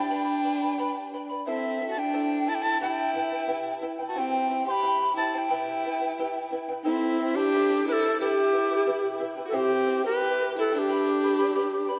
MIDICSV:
0, 0, Header, 1, 4, 480
1, 0, Start_track
1, 0, Key_signature, 1, "minor"
1, 0, Tempo, 672646
1, 75, Time_signature, 2, 2, 24, 8
1, 8557, End_track
2, 0, Start_track
2, 0, Title_t, "Quena"
2, 0, Program_c, 0, 77
2, 0, Note_on_c, 0, 79, 85
2, 778, Note_off_c, 0, 79, 0
2, 1045, Note_on_c, 0, 76, 95
2, 1329, Note_off_c, 0, 76, 0
2, 1360, Note_on_c, 0, 81, 85
2, 1419, Note_on_c, 0, 79, 91
2, 1430, Note_off_c, 0, 81, 0
2, 1775, Note_on_c, 0, 81, 105
2, 1786, Note_off_c, 0, 79, 0
2, 1819, Note_on_c, 0, 79, 83
2, 1830, Note_off_c, 0, 81, 0
2, 1871, Note_on_c, 0, 81, 108
2, 1882, Note_off_c, 0, 79, 0
2, 2004, Note_off_c, 0, 81, 0
2, 2010, Note_on_c, 0, 79, 97
2, 2695, Note_off_c, 0, 79, 0
2, 2908, Note_on_c, 0, 81, 81
2, 2983, Note_on_c, 0, 79, 97
2, 2994, Note_off_c, 0, 81, 0
2, 3330, Note_off_c, 0, 79, 0
2, 3337, Note_on_c, 0, 84, 104
2, 3361, Note_on_c, 0, 83, 113
2, 3369, Note_off_c, 0, 84, 0
2, 3663, Note_off_c, 0, 83, 0
2, 3691, Note_on_c, 0, 81, 104
2, 3806, Note_off_c, 0, 81, 0
2, 3806, Note_on_c, 0, 81, 85
2, 3840, Note_on_c, 0, 79, 93
2, 3847, Note_off_c, 0, 81, 0
2, 4642, Note_off_c, 0, 79, 0
2, 4881, Note_on_c, 0, 64, 94
2, 5249, Note_on_c, 0, 67, 110
2, 5259, Note_off_c, 0, 64, 0
2, 5603, Note_off_c, 0, 67, 0
2, 5620, Note_on_c, 0, 71, 97
2, 5656, Note_on_c, 0, 69, 106
2, 5663, Note_off_c, 0, 71, 0
2, 5833, Note_off_c, 0, 69, 0
2, 5856, Note_on_c, 0, 67, 105
2, 6538, Note_off_c, 0, 67, 0
2, 6766, Note_on_c, 0, 69, 76
2, 6812, Note_on_c, 0, 67, 111
2, 6823, Note_off_c, 0, 69, 0
2, 7165, Note_off_c, 0, 67, 0
2, 7175, Note_on_c, 0, 71, 112
2, 7501, Note_off_c, 0, 71, 0
2, 7557, Note_on_c, 0, 69, 104
2, 7669, Note_off_c, 0, 69, 0
2, 7669, Note_on_c, 0, 69, 90
2, 7697, Note_on_c, 0, 67, 98
2, 7704, Note_off_c, 0, 69, 0
2, 8492, Note_off_c, 0, 67, 0
2, 8557, End_track
3, 0, Start_track
3, 0, Title_t, "Charango"
3, 0, Program_c, 1, 24
3, 70, Note_on_c, 1, 67, 79
3, 72, Note_on_c, 1, 71, 92
3, 73, Note_on_c, 1, 74, 97
3, 74, Note_on_c, 1, 79, 90
3, 77, Note_on_c, 1, 83, 104
3, 307, Note_off_c, 1, 79, 0
3, 310, Note_off_c, 1, 71, 0
3, 310, Note_off_c, 1, 74, 0
3, 313, Note_off_c, 1, 67, 0
3, 316, Note_off_c, 1, 83, 0
3, 316, Note_on_c, 1, 79, 61
3, 319, Note_on_c, 1, 71, 65
3, 319, Note_on_c, 1, 74, 76
3, 325, Note_on_c, 1, 83, 73
3, 431, Note_off_c, 1, 83, 0
3, 436, Note_off_c, 1, 79, 0
3, 437, Note_off_c, 1, 71, 0
3, 437, Note_off_c, 1, 74, 0
3, 440, Note_on_c, 1, 83, 56
3, 446, Note_on_c, 1, 74, 53
3, 453, Note_on_c, 1, 71, 50
3, 558, Note_off_c, 1, 71, 0
3, 558, Note_off_c, 1, 83, 0
3, 558, Note_on_c, 1, 67, 78
3, 558, Note_on_c, 1, 79, 81
3, 559, Note_off_c, 1, 74, 0
3, 567, Note_on_c, 1, 71, 91
3, 567, Note_on_c, 1, 74, 86
3, 568, Note_on_c, 1, 83, 95
3, 797, Note_off_c, 1, 67, 0
3, 797, Note_off_c, 1, 79, 0
3, 801, Note_off_c, 1, 71, 0
3, 802, Note_off_c, 1, 74, 0
3, 802, Note_off_c, 1, 83, 0
3, 809, Note_on_c, 1, 79, 75
3, 811, Note_on_c, 1, 71, 69
3, 816, Note_on_c, 1, 74, 72
3, 818, Note_on_c, 1, 83, 71
3, 916, Note_off_c, 1, 83, 0
3, 922, Note_off_c, 1, 79, 0
3, 923, Note_off_c, 1, 74, 0
3, 924, Note_off_c, 1, 71, 0
3, 925, Note_on_c, 1, 83, 57
3, 931, Note_on_c, 1, 74, 53
3, 934, Note_on_c, 1, 71, 45
3, 1040, Note_off_c, 1, 83, 0
3, 1044, Note_off_c, 1, 74, 0
3, 1045, Note_off_c, 1, 71, 0
3, 1048, Note_on_c, 1, 72, 87
3, 1049, Note_on_c, 1, 76, 85
3, 1050, Note_on_c, 1, 64, 96
3, 1056, Note_on_c, 1, 69, 102
3, 1058, Note_on_c, 1, 81, 99
3, 1268, Note_off_c, 1, 76, 0
3, 1276, Note_off_c, 1, 64, 0
3, 1277, Note_on_c, 1, 76, 61
3, 1279, Note_off_c, 1, 81, 0
3, 1281, Note_off_c, 1, 69, 0
3, 1282, Note_off_c, 1, 72, 0
3, 1284, Note_on_c, 1, 64, 72
3, 1288, Note_on_c, 1, 81, 74
3, 1290, Note_on_c, 1, 69, 70
3, 1394, Note_off_c, 1, 81, 0
3, 1395, Note_off_c, 1, 69, 0
3, 1397, Note_off_c, 1, 76, 0
3, 1400, Note_off_c, 1, 64, 0
3, 1402, Note_on_c, 1, 81, 61
3, 1404, Note_on_c, 1, 69, 55
3, 1410, Note_on_c, 1, 64, 54
3, 1516, Note_off_c, 1, 64, 0
3, 1518, Note_off_c, 1, 69, 0
3, 1520, Note_off_c, 1, 81, 0
3, 1524, Note_on_c, 1, 76, 79
3, 1525, Note_on_c, 1, 64, 87
3, 1526, Note_on_c, 1, 69, 79
3, 1527, Note_on_c, 1, 72, 73
3, 1533, Note_on_c, 1, 81, 89
3, 1747, Note_off_c, 1, 76, 0
3, 1750, Note_off_c, 1, 64, 0
3, 1755, Note_off_c, 1, 69, 0
3, 1755, Note_on_c, 1, 76, 72
3, 1757, Note_off_c, 1, 81, 0
3, 1759, Note_on_c, 1, 64, 68
3, 1762, Note_off_c, 1, 72, 0
3, 1763, Note_on_c, 1, 69, 67
3, 1766, Note_on_c, 1, 81, 68
3, 1869, Note_off_c, 1, 81, 0
3, 1873, Note_off_c, 1, 69, 0
3, 1876, Note_off_c, 1, 76, 0
3, 1877, Note_on_c, 1, 81, 65
3, 1878, Note_off_c, 1, 64, 0
3, 1882, Note_on_c, 1, 69, 57
3, 1887, Note_on_c, 1, 64, 49
3, 1997, Note_off_c, 1, 81, 0
3, 2000, Note_off_c, 1, 64, 0
3, 2000, Note_off_c, 1, 69, 0
3, 2002, Note_on_c, 1, 76, 92
3, 2003, Note_on_c, 1, 67, 83
3, 2004, Note_on_c, 1, 71, 99
3, 2009, Note_on_c, 1, 64, 93
3, 2012, Note_on_c, 1, 79, 111
3, 2235, Note_off_c, 1, 76, 0
3, 2239, Note_off_c, 1, 64, 0
3, 2240, Note_off_c, 1, 67, 0
3, 2241, Note_off_c, 1, 71, 0
3, 2243, Note_on_c, 1, 76, 70
3, 2245, Note_off_c, 1, 79, 0
3, 2248, Note_on_c, 1, 64, 69
3, 2252, Note_on_c, 1, 79, 80
3, 2253, Note_on_c, 1, 71, 65
3, 2354, Note_off_c, 1, 79, 0
3, 2359, Note_off_c, 1, 71, 0
3, 2360, Note_off_c, 1, 76, 0
3, 2361, Note_off_c, 1, 64, 0
3, 2362, Note_on_c, 1, 79, 57
3, 2368, Note_on_c, 1, 71, 51
3, 2369, Note_on_c, 1, 64, 47
3, 2475, Note_off_c, 1, 64, 0
3, 2475, Note_off_c, 1, 71, 0
3, 2480, Note_off_c, 1, 79, 0
3, 2480, Note_on_c, 1, 67, 74
3, 2483, Note_on_c, 1, 71, 74
3, 2483, Note_on_c, 1, 76, 90
3, 2484, Note_on_c, 1, 64, 80
3, 2488, Note_on_c, 1, 79, 88
3, 2713, Note_off_c, 1, 76, 0
3, 2719, Note_off_c, 1, 64, 0
3, 2719, Note_off_c, 1, 67, 0
3, 2720, Note_off_c, 1, 71, 0
3, 2721, Note_on_c, 1, 76, 81
3, 2723, Note_off_c, 1, 79, 0
3, 2728, Note_on_c, 1, 64, 74
3, 2728, Note_on_c, 1, 71, 68
3, 2733, Note_on_c, 1, 79, 82
3, 2834, Note_off_c, 1, 79, 0
3, 2839, Note_off_c, 1, 76, 0
3, 2841, Note_off_c, 1, 71, 0
3, 2843, Note_off_c, 1, 64, 0
3, 2843, Note_on_c, 1, 79, 62
3, 2849, Note_on_c, 1, 71, 59
3, 2856, Note_on_c, 1, 64, 49
3, 2958, Note_off_c, 1, 64, 0
3, 2960, Note_off_c, 1, 79, 0
3, 2962, Note_on_c, 1, 67, 88
3, 2963, Note_off_c, 1, 71, 0
3, 2965, Note_on_c, 1, 76, 93
3, 2966, Note_on_c, 1, 64, 103
3, 2969, Note_on_c, 1, 79, 105
3, 2971, Note_on_c, 1, 72, 88
3, 3199, Note_off_c, 1, 76, 0
3, 3200, Note_off_c, 1, 67, 0
3, 3202, Note_off_c, 1, 64, 0
3, 3203, Note_off_c, 1, 79, 0
3, 3204, Note_off_c, 1, 72, 0
3, 3208, Note_on_c, 1, 76, 58
3, 3214, Note_on_c, 1, 64, 78
3, 3216, Note_on_c, 1, 72, 64
3, 3222, Note_on_c, 1, 79, 75
3, 3321, Note_off_c, 1, 79, 0
3, 3323, Note_off_c, 1, 76, 0
3, 3326, Note_off_c, 1, 64, 0
3, 3327, Note_off_c, 1, 72, 0
3, 3330, Note_on_c, 1, 79, 60
3, 3337, Note_on_c, 1, 72, 57
3, 3342, Note_on_c, 1, 64, 48
3, 3433, Note_off_c, 1, 64, 0
3, 3439, Note_on_c, 1, 76, 78
3, 3440, Note_off_c, 1, 72, 0
3, 3441, Note_off_c, 1, 79, 0
3, 3441, Note_on_c, 1, 67, 77
3, 3442, Note_on_c, 1, 64, 80
3, 3449, Note_on_c, 1, 72, 90
3, 3449, Note_on_c, 1, 79, 84
3, 3679, Note_off_c, 1, 67, 0
3, 3679, Note_off_c, 1, 76, 0
3, 3680, Note_off_c, 1, 64, 0
3, 3683, Note_off_c, 1, 72, 0
3, 3684, Note_off_c, 1, 79, 0
3, 3692, Note_on_c, 1, 64, 69
3, 3693, Note_on_c, 1, 76, 58
3, 3698, Note_on_c, 1, 72, 69
3, 3699, Note_on_c, 1, 79, 77
3, 3800, Note_off_c, 1, 79, 0
3, 3805, Note_off_c, 1, 64, 0
3, 3805, Note_off_c, 1, 76, 0
3, 3808, Note_off_c, 1, 72, 0
3, 3809, Note_on_c, 1, 79, 67
3, 3817, Note_on_c, 1, 72, 57
3, 3819, Note_on_c, 1, 64, 48
3, 3921, Note_off_c, 1, 64, 0
3, 3921, Note_off_c, 1, 79, 0
3, 3921, Note_on_c, 1, 67, 93
3, 3925, Note_off_c, 1, 72, 0
3, 3927, Note_on_c, 1, 76, 80
3, 3928, Note_on_c, 1, 71, 100
3, 3929, Note_on_c, 1, 79, 109
3, 3930, Note_on_c, 1, 64, 90
3, 4160, Note_off_c, 1, 67, 0
3, 4163, Note_off_c, 1, 71, 0
3, 4163, Note_off_c, 1, 76, 0
3, 4164, Note_off_c, 1, 64, 0
3, 4164, Note_off_c, 1, 79, 0
3, 4170, Note_on_c, 1, 76, 69
3, 4175, Note_on_c, 1, 64, 64
3, 4177, Note_on_c, 1, 79, 78
3, 4179, Note_on_c, 1, 71, 71
3, 4273, Note_off_c, 1, 79, 0
3, 4278, Note_off_c, 1, 71, 0
3, 4282, Note_off_c, 1, 64, 0
3, 4282, Note_on_c, 1, 79, 61
3, 4284, Note_off_c, 1, 76, 0
3, 4287, Note_on_c, 1, 71, 57
3, 4291, Note_on_c, 1, 64, 48
3, 4400, Note_off_c, 1, 79, 0
3, 4402, Note_off_c, 1, 71, 0
3, 4404, Note_off_c, 1, 64, 0
3, 4417, Note_on_c, 1, 67, 84
3, 4420, Note_on_c, 1, 76, 88
3, 4421, Note_on_c, 1, 64, 91
3, 4421, Note_on_c, 1, 71, 90
3, 4421, Note_on_c, 1, 79, 98
3, 4635, Note_off_c, 1, 76, 0
3, 4644, Note_off_c, 1, 71, 0
3, 4644, Note_on_c, 1, 76, 71
3, 4645, Note_off_c, 1, 64, 0
3, 4648, Note_off_c, 1, 67, 0
3, 4649, Note_off_c, 1, 79, 0
3, 4653, Note_on_c, 1, 71, 79
3, 4654, Note_on_c, 1, 64, 73
3, 4658, Note_on_c, 1, 79, 78
3, 4761, Note_off_c, 1, 76, 0
3, 4761, Note_off_c, 1, 79, 0
3, 4765, Note_off_c, 1, 71, 0
3, 4766, Note_off_c, 1, 64, 0
3, 4770, Note_on_c, 1, 79, 70
3, 4775, Note_on_c, 1, 71, 64
3, 4779, Note_on_c, 1, 64, 54
3, 4880, Note_off_c, 1, 64, 0
3, 4883, Note_off_c, 1, 71, 0
3, 4884, Note_off_c, 1, 79, 0
3, 4886, Note_on_c, 1, 69, 90
3, 4888, Note_on_c, 1, 64, 96
3, 4891, Note_on_c, 1, 72, 95
3, 4892, Note_on_c, 1, 76, 88
3, 4893, Note_on_c, 1, 81, 99
3, 5122, Note_off_c, 1, 69, 0
3, 5123, Note_off_c, 1, 64, 0
3, 5125, Note_off_c, 1, 72, 0
3, 5125, Note_off_c, 1, 76, 0
3, 5125, Note_off_c, 1, 81, 0
3, 5132, Note_on_c, 1, 76, 58
3, 5136, Note_on_c, 1, 64, 60
3, 5140, Note_on_c, 1, 72, 72
3, 5143, Note_on_c, 1, 81, 74
3, 5245, Note_off_c, 1, 76, 0
3, 5247, Note_off_c, 1, 64, 0
3, 5249, Note_off_c, 1, 72, 0
3, 5250, Note_off_c, 1, 81, 0
3, 5259, Note_on_c, 1, 81, 62
3, 5265, Note_on_c, 1, 72, 59
3, 5274, Note_on_c, 1, 64, 50
3, 5368, Note_off_c, 1, 81, 0
3, 5371, Note_off_c, 1, 72, 0
3, 5376, Note_off_c, 1, 64, 0
3, 5386, Note_on_c, 1, 76, 78
3, 5388, Note_on_c, 1, 69, 73
3, 5389, Note_on_c, 1, 81, 85
3, 5390, Note_on_c, 1, 64, 84
3, 5391, Note_on_c, 1, 72, 83
3, 5607, Note_off_c, 1, 76, 0
3, 5610, Note_off_c, 1, 64, 0
3, 5613, Note_off_c, 1, 69, 0
3, 5613, Note_off_c, 1, 81, 0
3, 5614, Note_off_c, 1, 72, 0
3, 5616, Note_on_c, 1, 76, 59
3, 5619, Note_on_c, 1, 64, 61
3, 5623, Note_on_c, 1, 72, 72
3, 5627, Note_on_c, 1, 81, 75
3, 5727, Note_off_c, 1, 76, 0
3, 5728, Note_off_c, 1, 64, 0
3, 5730, Note_off_c, 1, 72, 0
3, 5732, Note_off_c, 1, 81, 0
3, 5741, Note_on_c, 1, 72, 53
3, 5741, Note_on_c, 1, 81, 61
3, 5747, Note_on_c, 1, 64, 47
3, 5849, Note_off_c, 1, 72, 0
3, 5849, Note_off_c, 1, 81, 0
3, 5853, Note_off_c, 1, 64, 0
3, 5855, Note_on_c, 1, 67, 95
3, 5856, Note_on_c, 1, 76, 90
3, 5861, Note_on_c, 1, 64, 91
3, 5862, Note_on_c, 1, 71, 100
3, 5867, Note_on_c, 1, 79, 101
3, 6074, Note_off_c, 1, 76, 0
3, 6077, Note_off_c, 1, 71, 0
3, 6078, Note_off_c, 1, 64, 0
3, 6083, Note_on_c, 1, 76, 68
3, 6085, Note_off_c, 1, 79, 0
3, 6086, Note_off_c, 1, 67, 0
3, 6086, Note_on_c, 1, 64, 67
3, 6086, Note_on_c, 1, 71, 68
3, 6094, Note_on_c, 1, 79, 74
3, 6196, Note_off_c, 1, 79, 0
3, 6200, Note_off_c, 1, 76, 0
3, 6201, Note_off_c, 1, 71, 0
3, 6202, Note_off_c, 1, 64, 0
3, 6204, Note_on_c, 1, 79, 65
3, 6209, Note_on_c, 1, 71, 52
3, 6213, Note_on_c, 1, 64, 51
3, 6319, Note_off_c, 1, 64, 0
3, 6321, Note_off_c, 1, 79, 0
3, 6322, Note_off_c, 1, 71, 0
3, 6323, Note_on_c, 1, 67, 80
3, 6328, Note_on_c, 1, 64, 79
3, 6329, Note_on_c, 1, 76, 85
3, 6330, Note_on_c, 1, 71, 86
3, 6332, Note_on_c, 1, 79, 85
3, 6552, Note_off_c, 1, 76, 0
3, 6554, Note_off_c, 1, 64, 0
3, 6560, Note_off_c, 1, 67, 0
3, 6561, Note_on_c, 1, 76, 80
3, 6562, Note_off_c, 1, 71, 0
3, 6563, Note_on_c, 1, 64, 80
3, 6565, Note_off_c, 1, 79, 0
3, 6571, Note_on_c, 1, 71, 83
3, 6572, Note_on_c, 1, 79, 87
3, 6679, Note_off_c, 1, 76, 0
3, 6679, Note_off_c, 1, 79, 0
3, 6680, Note_off_c, 1, 64, 0
3, 6681, Note_off_c, 1, 71, 0
3, 6687, Note_on_c, 1, 79, 66
3, 6689, Note_on_c, 1, 71, 56
3, 6691, Note_on_c, 1, 64, 48
3, 6787, Note_off_c, 1, 64, 0
3, 6795, Note_off_c, 1, 79, 0
3, 6795, Note_on_c, 1, 64, 94
3, 6796, Note_on_c, 1, 67, 97
3, 6797, Note_on_c, 1, 76, 92
3, 6798, Note_off_c, 1, 71, 0
3, 6801, Note_on_c, 1, 72, 96
3, 6804, Note_on_c, 1, 79, 113
3, 7034, Note_off_c, 1, 76, 0
3, 7036, Note_off_c, 1, 64, 0
3, 7037, Note_off_c, 1, 67, 0
3, 7039, Note_off_c, 1, 72, 0
3, 7040, Note_off_c, 1, 79, 0
3, 7043, Note_on_c, 1, 76, 66
3, 7047, Note_on_c, 1, 64, 69
3, 7050, Note_on_c, 1, 72, 77
3, 7053, Note_on_c, 1, 79, 75
3, 7146, Note_off_c, 1, 79, 0
3, 7154, Note_off_c, 1, 64, 0
3, 7155, Note_on_c, 1, 79, 59
3, 7157, Note_off_c, 1, 72, 0
3, 7160, Note_off_c, 1, 76, 0
3, 7162, Note_on_c, 1, 64, 48
3, 7165, Note_on_c, 1, 72, 52
3, 7276, Note_off_c, 1, 79, 0
3, 7278, Note_off_c, 1, 64, 0
3, 7281, Note_off_c, 1, 72, 0
3, 7282, Note_on_c, 1, 67, 76
3, 7284, Note_on_c, 1, 76, 76
3, 7287, Note_on_c, 1, 64, 79
3, 7289, Note_on_c, 1, 79, 90
3, 7517, Note_off_c, 1, 76, 0
3, 7519, Note_off_c, 1, 67, 0
3, 7520, Note_off_c, 1, 64, 0
3, 7523, Note_off_c, 1, 79, 0
3, 7525, Note_on_c, 1, 76, 70
3, 7529, Note_on_c, 1, 64, 76
3, 7536, Note_on_c, 1, 72, 64
3, 7537, Note_on_c, 1, 79, 70
3, 7639, Note_off_c, 1, 79, 0
3, 7641, Note_off_c, 1, 76, 0
3, 7643, Note_off_c, 1, 64, 0
3, 7646, Note_off_c, 1, 72, 0
3, 7648, Note_on_c, 1, 79, 65
3, 7654, Note_on_c, 1, 72, 54
3, 7657, Note_on_c, 1, 64, 50
3, 7759, Note_off_c, 1, 79, 0
3, 7765, Note_off_c, 1, 72, 0
3, 7767, Note_off_c, 1, 64, 0
3, 7767, Note_on_c, 1, 79, 91
3, 7768, Note_on_c, 1, 67, 91
3, 7769, Note_on_c, 1, 74, 89
3, 7770, Note_on_c, 1, 71, 93
3, 7774, Note_on_c, 1, 83, 106
3, 8002, Note_off_c, 1, 67, 0
3, 8002, Note_off_c, 1, 79, 0
3, 8003, Note_off_c, 1, 71, 0
3, 8003, Note_off_c, 1, 74, 0
3, 8005, Note_off_c, 1, 83, 0
3, 8013, Note_on_c, 1, 79, 62
3, 8016, Note_on_c, 1, 71, 63
3, 8017, Note_on_c, 1, 74, 72
3, 8021, Note_on_c, 1, 83, 77
3, 8117, Note_off_c, 1, 83, 0
3, 8122, Note_off_c, 1, 74, 0
3, 8125, Note_off_c, 1, 79, 0
3, 8125, Note_on_c, 1, 83, 66
3, 8126, Note_off_c, 1, 71, 0
3, 8131, Note_on_c, 1, 74, 51
3, 8136, Note_on_c, 1, 71, 47
3, 8238, Note_off_c, 1, 83, 0
3, 8241, Note_off_c, 1, 71, 0
3, 8242, Note_off_c, 1, 74, 0
3, 8246, Note_on_c, 1, 79, 77
3, 8246, Note_on_c, 1, 83, 96
3, 8247, Note_on_c, 1, 67, 95
3, 8249, Note_on_c, 1, 71, 86
3, 8250, Note_on_c, 1, 74, 82
3, 8463, Note_off_c, 1, 79, 0
3, 8470, Note_off_c, 1, 71, 0
3, 8472, Note_on_c, 1, 79, 72
3, 8473, Note_off_c, 1, 74, 0
3, 8475, Note_off_c, 1, 83, 0
3, 8479, Note_on_c, 1, 71, 73
3, 8481, Note_off_c, 1, 67, 0
3, 8481, Note_on_c, 1, 74, 70
3, 8484, Note_on_c, 1, 83, 71
3, 8557, Note_off_c, 1, 71, 0
3, 8557, Note_off_c, 1, 74, 0
3, 8557, Note_off_c, 1, 79, 0
3, 8557, Note_off_c, 1, 83, 0
3, 8557, End_track
4, 0, Start_track
4, 0, Title_t, "Violin"
4, 0, Program_c, 2, 40
4, 0, Note_on_c, 2, 62, 81
4, 775, Note_off_c, 2, 62, 0
4, 1049, Note_on_c, 2, 60, 78
4, 1332, Note_off_c, 2, 60, 0
4, 1348, Note_on_c, 2, 66, 63
4, 1408, Note_on_c, 2, 62, 88
4, 1418, Note_off_c, 2, 66, 0
4, 1772, Note_on_c, 2, 64, 95
4, 1782, Note_off_c, 2, 62, 0
4, 1803, Note_off_c, 2, 64, 0
4, 1803, Note_on_c, 2, 64, 77
4, 1865, Note_off_c, 2, 64, 0
4, 1865, Note_on_c, 2, 64, 99
4, 2001, Note_off_c, 2, 64, 0
4, 2018, Note_on_c, 2, 64, 89
4, 2699, Note_off_c, 2, 64, 0
4, 2918, Note_on_c, 2, 66, 61
4, 2985, Note_on_c, 2, 60, 83
4, 2995, Note_off_c, 2, 66, 0
4, 3327, Note_off_c, 2, 60, 0
4, 3331, Note_on_c, 2, 67, 104
4, 3660, Note_off_c, 2, 67, 0
4, 3686, Note_on_c, 2, 64, 80
4, 3807, Note_off_c, 2, 64, 0
4, 3807, Note_on_c, 2, 64, 80
4, 4643, Note_off_c, 2, 64, 0
4, 4880, Note_on_c, 2, 60, 81
4, 5244, Note_on_c, 2, 62, 92
4, 5255, Note_off_c, 2, 60, 0
4, 5601, Note_off_c, 2, 62, 0
4, 5611, Note_on_c, 2, 64, 104
4, 5828, Note_off_c, 2, 64, 0
4, 5849, Note_on_c, 2, 64, 89
4, 6535, Note_off_c, 2, 64, 0
4, 6745, Note_on_c, 2, 66, 60
4, 6810, Note_on_c, 2, 60, 89
4, 6821, Note_off_c, 2, 66, 0
4, 7163, Note_off_c, 2, 60, 0
4, 7178, Note_on_c, 2, 67, 113
4, 7503, Note_off_c, 2, 67, 0
4, 7554, Note_on_c, 2, 64, 89
4, 7670, Note_on_c, 2, 62, 82
4, 7680, Note_off_c, 2, 64, 0
4, 8493, Note_off_c, 2, 62, 0
4, 8557, End_track
0, 0, End_of_file